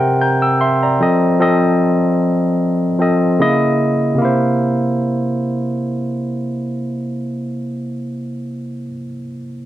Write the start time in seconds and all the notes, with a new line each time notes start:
Already playing: C3 C4 A#4 E5 F#5 G5
0.21 A#5 G6
0.42 G5 E6
0.61 E5 C6
0.83 D5 A#5
1.00 F3 C4 A4 D#5
1.40 F3 C4 A4 D#5
2.99 F3 C4 A4 D#5
3.39 C#3 A#3 E4 D#5
4.15 C3 A#3
4.22 E4 C5